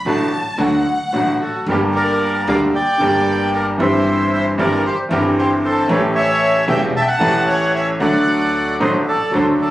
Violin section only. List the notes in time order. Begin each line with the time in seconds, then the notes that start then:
0.08 A5
0.62 F#5
1.42 F#4
1.69 G4
1.95 A#4
2.48 D5
2.74 D5
3.54 A#4
3.82 C5
4.33 C5
4.60 A#4
4.87 G4
5.13 G4
5.40 G4
5.66 A4
5.91 A4
6.18 C#5
6.72 E5
6.97 E5
7.04 E5
7.11 F#5
7.50 C#5
7.76 C#5
8.03 D5
8.83 C5
9.08 A4
9.36 A4
9.63 A4